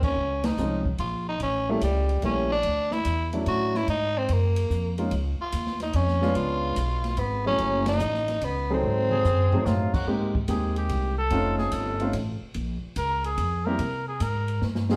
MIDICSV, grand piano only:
0, 0, Header, 1, 2, 480
1, 0, Start_track
1, 0, Tempo, 412939
1, 189, Time_signature, 3, 2, 24, 8
1, 17392, End_track
2, 0, Start_track
2, 0, Title_t, "Grand piano"
2, 0, Program_c, 0, 0
2, 0, Note_on_c, 0, 58, 57
2, 0, Note_on_c, 0, 60, 50
2, 0, Note_on_c, 0, 63, 51
2, 0, Note_on_c, 0, 70, 59
2, 158, Note_off_c, 0, 58, 0
2, 160, Note_off_c, 0, 63, 0
2, 161, Note_off_c, 0, 60, 0
2, 163, Note_off_c, 0, 70, 0
2, 681, Note_on_c, 0, 53, 62
2, 684, Note_on_c, 0, 60, 54
2, 689, Note_on_c, 0, 63, 67
2, 690, Note_on_c, 0, 56, 54
2, 694, Note_on_c, 0, 61, 60
2, 967, Note_off_c, 0, 53, 0
2, 969, Note_off_c, 0, 60, 0
2, 971, Note_off_c, 0, 63, 0
2, 972, Note_off_c, 0, 56, 0
2, 974, Note_off_c, 0, 61, 0
2, 1965, Note_on_c, 0, 55, 71
2, 1968, Note_on_c, 0, 57, 62
2, 1971, Note_on_c, 0, 58, 64
2, 1971, Note_on_c, 0, 64, 78
2, 1974, Note_on_c, 0, 61, 61
2, 2101, Note_off_c, 0, 55, 0
2, 2103, Note_off_c, 0, 57, 0
2, 2104, Note_off_c, 0, 58, 0
2, 2104, Note_off_c, 0, 64, 0
2, 2105, Note_off_c, 0, 61, 0
2, 2594, Note_on_c, 0, 57, 59
2, 2596, Note_on_c, 0, 55, 65
2, 2602, Note_on_c, 0, 58, 59
2, 2602, Note_on_c, 0, 61, 54
2, 2604, Note_on_c, 0, 64, 67
2, 2884, Note_off_c, 0, 57, 0
2, 2885, Note_off_c, 0, 55, 0
2, 2888, Note_off_c, 0, 58, 0
2, 2888, Note_off_c, 0, 61, 0
2, 2889, Note_off_c, 0, 64, 0
2, 3874, Note_on_c, 0, 54, 66
2, 3876, Note_on_c, 0, 57, 58
2, 3876, Note_on_c, 0, 61, 60
2, 3880, Note_on_c, 0, 64, 73
2, 3882, Note_on_c, 0, 62, 57
2, 4480, Note_off_c, 0, 54, 0
2, 4481, Note_off_c, 0, 57, 0
2, 4481, Note_off_c, 0, 61, 0
2, 4483, Note_off_c, 0, 64, 0
2, 4484, Note_off_c, 0, 62, 0
2, 5789, Note_on_c, 0, 56, 60
2, 5795, Note_on_c, 0, 58, 54
2, 5798, Note_on_c, 0, 63, 60
2, 5799, Note_on_c, 0, 65, 66
2, 5800, Note_on_c, 0, 61, 57
2, 5932, Note_off_c, 0, 56, 0
2, 5935, Note_off_c, 0, 58, 0
2, 5937, Note_off_c, 0, 63, 0
2, 5937, Note_off_c, 0, 65, 0
2, 5938, Note_off_c, 0, 61, 0
2, 7227, Note_on_c, 0, 56, 74
2, 7236, Note_on_c, 0, 59, 72
2, 7236, Note_on_c, 0, 61, 70
2, 7238, Note_on_c, 0, 65, 93
2, 7239, Note_on_c, 0, 62, 77
2, 7835, Note_off_c, 0, 56, 0
2, 7839, Note_off_c, 0, 59, 0
2, 7840, Note_off_c, 0, 61, 0
2, 7840, Note_off_c, 0, 65, 0
2, 7841, Note_off_c, 0, 62, 0
2, 8673, Note_on_c, 0, 54, 69
2, 8673, Note_on_c, 0, 57, 62
2, 8673, Note_on_c, 0, 64, 57
2, 8676, Note_on_c, 0, 61, 65
2, 8679, Note_on_c, 0, 68, 76
2, 9278, Note_off_c, 0, 54, 0
2, 9278, Note_off_c, 0, 57, 0
2, 9278, Note_off_c, 0, 64, 0
2, 9279, Note_off_c, 0, 61, 0
2, 9281, Note_off_c, 0, 68, 0
2, 10114, Note_on_c, 0, 54, 75
2, 10118, Note_on_c, 0, 68, 80
2, 10118, Note_on_c, 0, 69, 66
2, 10119, Note_on_c, 0, 60, 69
2, 10123, Note_on_c, 0, 63, 62
2, 10718, Note_off_c, 0, 54, 0
2, 10720, Note_off_c, 0, 60, 0
2, 10720, Note_off_c, 0, 68, 0
2, 10720, Note_off_c, 0, 69, 0
2, 10723, Note_off_c, 0, 63, 0
2, 11078, Note_on_c, 0, 54, 69
2, 11078, Note_on_c, 0, 60, 63
2, 11080, Note_on_c, 0, 57, 60
2, 11083, Note_on_c, 0, 63, 56
2, 11085, Note_on_c, 0, 68, 72
2, 11680, Note_off_c, 0, 54, 0
2, 11680, Note_off_c, 0, 60, 0
2, 11681, Note_off_c, 0, 57, 0
2, 11683, Note_off_c, 0, 63, 0
2, 11683, Note_off_c, 0, 68, 0
2, 11707, Note_on_c, 0, 56, 70
2, 11707, Note_on_c, 0, 67, 75
2, 11708, Note_on_c, 0, 60, 64
2, 11710, Note_on_c, 0, 58, 64
2, 11711, Note_on_c, 0, 63, 62
2, 11999, Note_off_c, 0, 56, 0
2, 11999, Note_off_c, 0, 60, 0
2, 11999, Note_off_c, 0, 67, 0
2, 12000, Note_off_c, 0, 58, 0
2, 12001, Note_off_c, 0, 63, 0
2, 12185, Note_on_c, 0, 56, 57
2, 12188, Note_on_c, 0, 60, 54
2, 12189, Note_on_c, 0, 63, 49
2, 12190, Note_on_c, 0, 67, 63
2, 12191, Note_on_c, 0, 58, 49
2, 12926, Note_off_c, 0, 56, 0
2, 12927, Note_off_c, 0, 60, 0
2, 12927, Note_off_c, 0, 63, 0
2, 12928, Note_off_c, 0, 58, 0
2, 12928, Note_off_c, 0, 67, 0
2, 13146, Note_on_c, 0, 57, 70
2, 13147, Note_on_c, 0, 60, 64
2, 13154, Note_on_c, 0, 61, 70
2, 13155, Note_on_c, 0, 63, 70
2, 13156, Note_on_c, 0, 65, 83
2, 13886, Note_off_c, 0, 57, 0
2, 13887, Note_off_c, 0, 60, 0
2, 13890, Note_off_c, 0, 61, 0
2, 13890, Note_off_c, 0, 63, 0
2, 13891, Note_off_c, 0, 65, 0
2, 13958, Note_on_c, 0, 57, 76
2, 13960, Note_on_c, 0, 61, 61
2, 13962, Note_on_c, 0, 60, 63
2, 13962, Note_on_c, 0, 63, 60
2, 13967, Note_on_c, 0, 65, 73
2, 14096, Note_off_c, 0, 57, 0
2, 14097, Note_off_c, 0, 61, 0
2, 14098, Note_off_c, 0, 60, 0
2, 14098, Note_off_c, 0, 63, 0
2, 14100, Note_off_c, 0, 65, 0
2, 15881, Note_on_c, 0, 55, 75
2, 15883, Note_on_c, 0, 58, 67
2, 15888, Note_on_c, 0, 60, 74
2, 15888, Note_on_c, 0, 64, 68
2, 15888, Note_on_c, 0, 67, 79
2, 16018, Note_off_c, 0, 55, 0
2, 16019, Note_off_c, 0, 58, 0
2, 16021, Note_off_c, 0, 60, 0
2, 16021, Note_off_c, 0, 64, 0
2, 16021, Note_off_c, 0, 67, 0
2, 17328, Note_on_c, 0, 60, 64
2, 17331, Note_on_c, 0, 55, 78
2, 17331, Note_on_c, 0, 68, 88
2, 17334, Note_on_c, 0, 63, 72
2, 17334, Note_on_c, 0, 65, 73
2, 17392, Note_off_c, 0, 55, 0
2, 17392, Note_off_c, 0, 60, 0
2, 17392, Note_off_c, 0, 63, 0
2, 17392, Note_off_c, 0, 65, 0
2, 17392, Note_off_c, 0, 68, 0
2, 17392, End_track
0, 0, End_of_file